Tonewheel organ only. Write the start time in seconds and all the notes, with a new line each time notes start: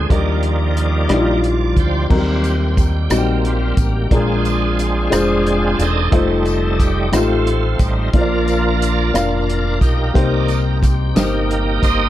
0.09 F3 G3 A#3 D#4 D5
1.79 G4 C5
2.11 G3 C4 F4
2.78 G4
3.11 A#3 C4 G4
3.46 G3 C4 F4
4.12 G#3 C4 D4 F4 G#4
5.81 C4 D#4 A4
6.13 G3 A3 D#4
6.79 G4
7.14 A3 C4 F4
7.79 G3 A3 D#4
8.15 F3 A#3 D4 F4 A#4
9.81 D#4 G4 A#4
10.15 D#3 A#3 D5
10.83 G4
11.15 A#3 D#4 G4
11.83 G4 C5 D#5